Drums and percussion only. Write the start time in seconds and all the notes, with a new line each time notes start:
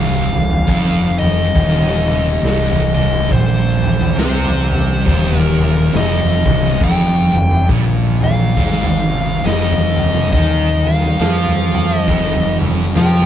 0.33 floor tom
0.50 floor tom
0.68 kick
1.20 floor tom
1.56 kick, floor tom
1.82 floor tom
2.08 mid tom
2.45 snare
2.70 floor tom
2.96 floor tom, mid tom
3.13 mid tom
3.31 kick, floor tom
3.83 floor tom
4.01 floor tom
4.19 snare
4.44 floor tom
4.71 floor tom
5.06 kick, floor tom
5.32 floor tom
5.58 floor tom, mid tom
5.94 snare, mid tom
6.19 floor tom
6.45 kick, floor tom, mid tom
6.63 mid tom
6.80 kick, floor tom
7.33 floor tom
7.51 floor tom
7.69 kick
8.21 floor tom
8.57 kick, floor tom
8.83 floor tom
9.10 mid tom
9.47 snare
9.71 floor tom
9.98 floor tom, mid tom
10.15 mid tom
10.32 kick, floor tom
10.84 floor tom
11.02 floor tom
11.21 snare
11.46 floor tom
11.72 floor tom
12.08 kick, floor tom
12.34 floor tom
12.60 floor tom, mid tom
12.95 snare, mid tom
13.22 floor tom